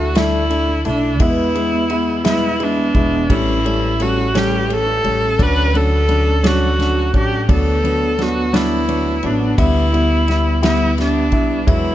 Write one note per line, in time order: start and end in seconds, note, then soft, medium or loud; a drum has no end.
0.00 0.82 D2 loud
0.00 0.15 A3 soft
0.00 0.16 D4 soft
0.00 0.15 E4 soft
0.00 0.19 F#4 medium
0.15 0.49 D3 medium
0.15 0.41 A3 medium
0.15 0.50 A3 medium
0.15 0.41 D4 medium
0.15 0.51 D4 medium
0.15 0.42 E4 loud
0.15 0.87 E4 medium
0.15 0.52 E4 medium
0.15 snare loud
0.15 ride medium
0.50 0.68 D3 medium
0.50 0.76 A3 medium
0.50 0.68 A3 medium
0.50 0.76 D4 medium
0.50 0.68 D4 medium
0.50 0.77 E4 medium
0.50 0.66 E4 medium
0.50 ride soft
0.67 1.04 A3 soft
0.67 1.03 D4 soft
0.67 1.02 E4 medium
0.85 1.20 B1 medium
0.85 1.11 A3 medium
0.85 1.11 D4 medium
0.85 1.23 D4 medium
0.85 1.11 E4 medium
0.85 ride soft
1.03 1.21 A3 soft
1.03 1.21 D4 soft
1.03 1.20 E4 medium
1.20 1.55 E2 medium
1.20 2.91 E2 loud
1.20 1.55 B2 medium
1.20 1.54 E3 medium
1.20 1.46 G#3 medium
1.20 1.55 G#3 medium
1.20 1.46 B3 medium
1.20 1.56 B3 medium
1.20 1.46 E4 medium
1.20 2.26 E4 medium
1.20 1.56 E4 medium
1.20 kick loud
1.20 ride medium
1.55 1.73 E3 medium
1.55 1.81 G#3 medium
1.55 1.73 G#3 medium
1.55 1.81 B3 medium
1.55 1.72 B3 medium
1.55 1.81 E4 medium
1.55 1.71 E4 medium
1.55 ride soft
1.72 2.09 E3 soft
1.72 2.09 G#3 soft
1.72 2.07 B3 medium
1.72 2.06 E4 soft
1.90 2.16 G#3 medium
1.90 2.16 B3 medium
1.90 2.16 E4 medium
1.90 ride soft
2.07 2.25 E3 soft
2.07 2.25 G#3 soft
2.07 2.26 B3 soft
2.07 2.25 E4 medium
2.24 2.60 E2 medium
2.24 2.60 B2 medium
2.24 2.58 E3 medium
2.24 2.51 G#3 medium
2.24 2.60 G#3 medium
2.24 2.51 B3 medium
2.24 2.60 B3 medium
2.24 2.51 E4 loud
2.24 2.64 E4 medium
2.24 2.61 E4 medium
2.24 snare loud
2.24 ride medium
2.60 2.77 E3 medium
2.60 2.86 G#3 medium
2.60 2.78 G#3 medium
2.60 2.86 B3 medium
2.60 2.77 B3 medium
2.60 3.33 D4 loud
2.60 2.86 E4 medium
2.60 2.76 E4 medium
2.60 ride soft
2.77 3.14 E3 soft
2.77 3.13 G#3 soft
2.77 3.12 B3 medium
2.77 3.11 E4 medium
2.95 3.28 E1 medium
2.95 3.21 G#3 medium
2.95 3.21 B3 medium
2.95 3.21 E4 medium
2.95 kick medium
2.95 ride soft
3.12 3.29 E3 soft
3.12 3.31 G#3 medium
3.12 3.30 B3 soft
3.12 3.30 E4 medium
3.30 5.00 A1 loud
3.30 3.65 A2 medium
3.30 3.63 E3 medium
3.30 3.56 G3 medium
3.30 3.64 G3 medium
3.30 3.56 A3 medium
3.30 3.56 C#4 medium
3.30 3.65 C#4 medium
3.30 4.03 E4 medium
3.30 3.66 E4 medium
3.30 kick loud
3.30 ride medium
3.64 3.82 E3 medium
3.64 3.91 G3 medium
3.64 3.83 G3 medium
3.64 3.91 A3 medium
3.64 3.91 C#4 medium
3.64 3.82 C#4 medium
3.64 3.80 E4 medium
3.64 ride soft
3.82 4.18 G3 soft
3.82 4.17 C#4 medium
3.82 4.15 E4 soft
3.99 4.25 G3 medium
3.99 4.26 A3 medium
3.99 4.26 C#4 medium
3.99 4.38 F#4 medium
3.99 ride soft
4.16 4.34 G3 soft
4.16 4.34 C#4 medium
4.16 4.34 E4 medium
4.34 4.69 A2 medium
4.34 4.68 E3 medium
4.34 4.60 G3 medium
4.34 4.69 G3 medium
4.34 4.60 A3 medium
4.34 4.61 C#4 loud
4.34 4.70 C#4 medium
4.34 4.70 E4 medium
4.34 4.74 G4 loud
4.34 snare loud
4.34 ride medium
4.69 4.87 E3 medium
4.69 4.87 G3 medium
4.69 4.95 A3 medium
4.69 4.96 C#4 medium
4.69 4.87 C#4 medium
4.69 4.85 E4 medium
4.69 5.44 A4 loud
4.69 ride soft
4.86 5.23 G3 soft
4.86 5.22 C#4 soft
4.86 5.20 E4 medium
5.04 5.37 A1 medium
5.04 5.30 G3 medium
5.04 5.30 A3 medium
5.04 5.30 C#4 medium
5.04 ride soft
5.22 5.39 G3 soft
5.22 5.39 C#4 medium
5.22 5.39 E4 medium
5.39 7.10 D2 medium
5.39 5.72 D3 medium
5.39 5.65 F#3 medium
5.39 5.73 A3 medium
5.39 5.65 C#4 medium
5.39 5.74 C#4 medium
5.39 5.65 D4 loud
5.39 5.75 F#4 medium
5.39 5.78 B4 loud
5.39 kick loud
5.39 ride medium
5.73 5.91 D3 medium
5.73 6.00 F#3 medium
5.73 5.92 A3 medium
5.73 6.00 C#4 medium
5.73 5.91 C#4 medium
5.73 6.00 D4 medium
5.73 5.90 F#4 medium
5.73 6.48 A4 loud
5.73 ride soft
5.91 6.28 A3 soft
5.91 6.26 C#4 soft
5.91 6.25 F#4 soft
6.08 6.35 F#3 medium
6.08 6.35 C#4 medium
6.08 6.35 D4 medium
6.08 ride soft
6.26 6.44 A3 soft
6.26 6.44 C#4 soft
6.26 6.44 F#4 medium
6.43 6.78 D3 medium
6.43 6.70 F#3 medium
6.43 6.79 A3 medium
6.43 6.70 C#4 medium
6.43 6.80 C#4 medium
6.43 6.70 D4 medium
6.43 6.80 F#4 medium
6.43 7.15 F#4 loud
6.43 snare loud
6.43 ride medium
6.78 6.96 D3 medium
6.78 7.04 F#3 medium
6.78 6.97 A3 medium
6.78 7.05 C#4 medium
6.78 6.97 C#4 medium
6.78 7.05 D4 medium
6.78 6.95 F#4 medium
6.78 snare soft
6.78 ride soft
6.96 7.33 A3 soft
6.96 7.31 C#4 soft
6.96 7.29 F#4 medium
7.13 7.47 A1 medium
7.13 7.39 F#3 medium
7.13 7.40 C#4 medium
7.13 7.40 D4 medium
7.13 7.48 G4 medium
7.13 kick medium
7.13 ride soft
7.31 7.48 A3 soft
7.31 7.49 C#4 soft
7.31 7.48 F#4 soft
7.49 9.19 D2 medium
7.49 7.83 D3 medium
7.49 7.74 F#3 medium
7.49 7.84 A3 medium
7.49 7.74 B3 medium
7.49 7.84 B3 medium
7.49 7.75 D4 medium
7.49 7.85 F#4 medium
7.49 8.23 A4 medium
7.49 kick loud
7.49 ride medium
7.84 8.01 D3 medium
7.84 8.09 F#3 medium
7.84 8.02 A3 medium
7.84 8.09 B3 medium
7.84 8.02 B3 medium
7.84 8.10 D4 medium
7.84 8.00 F#4 medium
7.84 ride soft
8.01 8.37 A3 soft
8.01 8.36 B3 soft
8.01 8.35 F#4 medium
8.18 8.44 F#3 medium
8.18 8.44 B3 medium
8.18 8.45 D4 medium
8.18 8.57 F#4 medium
8.18 snare soft
8.18 ride soft
8.36 8.53 A3 soft
8.36 8.53 B3 medium
8.36 8.53 F#4 medium
8.53 8.87 D3 medium
8.53 8.79 F#3 medium
8.53 8.88 A3 medium
8.53 8.79 B3 medium
8.53 8.88 B3 medium
8.53 8.79 D4 loud
8.53 9.27 E4 loud
8.53 8.89 F#4 medium
8.53 snare loud
8.53 ride medium
8.88 9.05 D3 medium
8.88 9.14 F#3 medium
8.88 9.06 A3 medium
8.88 9.14 B3 medium
8.88 9.06 B3 medium
8.88 9.14 D4 medium
8.88 9.04 F#4 medium
8.88 ride soft
9.06 9.42 A3 soft
9.06 9.41 B3 medium
9.06 9.39 F#4 medium
9.23 9.56 A1 medium
9.23 9.49 F#3 medium
9.23 9.49 B3 medium
9.23 9.49 D4 medium
9.23 9.59 D4 medium
9.23 ride soft
9.40 9.58 A3 soft
9.40 9.58 B3 soft
9.40 9.58 F#4 medium
9.57 11.32 D2 loud
9.57 9.91 D3 medium
9.57 9.84 G3 medium
9.57 9.92 G3 medium
9.57 9.84 B3 medium
9.57 9.93 B3 medium
9.57 9.84 E4 medium
9.57 9.94 E4 medium
9.57 10.60 E4 loud
9.57 kick loud
9.57 ride medium
9.92 10.10 D3 medium
9.92 10.18 G3 medium
9.92 10.11 G3 medium
9.92 10.19 B3 medium
9.92 10.10 B3 medium
9.92 10.19 E4 medium
9.92 10.09 E4 medium
9.92 ride soft
10.10 10.46 G3 soft
10.10 10.45 B3 soft
10.10 10.43 E4 medium
10.28 10.54 G3 medium
10.28 10.54 B3 medium
10.28 10.54 E4 medium
10.28 snare soft
10.28 ride soft
10.45 10.62 G3 soft
10.45 10.63 B3 medium
10.45 10.62 E4 medium
10.62 10.96 D3 medium
10.62 10.88 G3 medium
10.62 10.98 G3 medium
10.62 10.88 B3 medium
10.62 10.98 B3 medium
10.62 10.89 E4 loud
10.62 10.98 E4 medium
10.62 10.96 E4 medium
10.62 snare loud
10.62 ride medium
10.98 11.15 D3 medium
10.98 11.24 G3 medium
10.98 11.16 G3 medium
10.98 11.24 B3 medium
10.98 11.15 B3 medium
10.98 11.65 D4 loud
10.98 11.24 E4 medium
10.98 11.14 E4 medium
10.98 snare soft
10.98 ride soft
11.15 11.51 G3 soft
11.15 11.50 B3 soft
11.15 11.48 E4 medium
11.32 11.65 B1 medium
11.32 11.58 G3 medium
11.32 11.58 B3 medium
11.32 11.58 E4 medium
11.32 kick medium
11.32 ride soft
11.49 11.68 G3 soft
11.49 11.68 B3 soft
11.49 11.67 E4 medium
11.67 11.95 E2 medium
11.67 11.95 E2 loud
11.67 11.95 B2 medium
11.67 11.93 F#3 medium
11.67 11.95 F#3 medium
11.67 11.93 G#3 medium
11.67 11.95 G#3 medium
11.67 11.95 B3 medium
11.67 11.93 E4 medium
11.67 11.95 E4 medium
11.67 kick loud
11.67 ride medium
11.71 11.95 E4 medium